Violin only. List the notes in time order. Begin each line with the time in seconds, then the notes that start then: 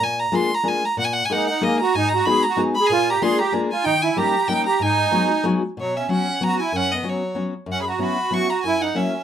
0.04 G#5
0.19 A#5
0.35 C6
0.54 A#5
0.68 G#5
0.85 A#5
0.99 F#5
1.04 G#5
1.13 F#5
1.25 G#5
1.32 F#5
1.47 F#5
1.63 D#5
1.80 A#5
1.95 G#5
2.09 A#5
2.25 B5
2.43 A#5
2.75 B5
2.87 G#5
3.10 A#5
3.23 C6
3.39 A#5
3.71 G#5
3.85 G5
4.02 G#5
4.18 A#5
4.48 G5
4.66 A#5
4.82 G#5
5.80 C#5
5.97 E5
6.12 F#5
6.43 A#5
6.60 G#5
6.76 F#5
6.92 D#5
7.09 C#5
7.72 F#5
7.82 B5
7.88 A#5
8.03 B5
8.33 C#6
8.50 A#5
8.63 G#5
8.82 F#5
8.96 E5